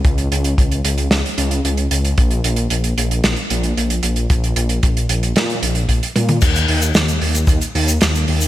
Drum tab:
CC |----------------|----------------|----------------|x---------------|
HH |xxxxxxxxxxxxxxxx|xxxxxxxxxxxxxxxx|xxxxxxxxxxxxxxxx|xxoxxxoxxxoxxxox|
SH |----------------|----------------|----------------|xx-xxx-xxx-xxx-x|
SD |--------o-------|--------o-------|--------o-------|----o-------o---|
T1 |----------------|----------------|--------------o-|----------------|
T2 |----------------|----------------|---------------o|----------------|
BD |o---o-----------|o---------------|o---o-------o---|o-------o-------|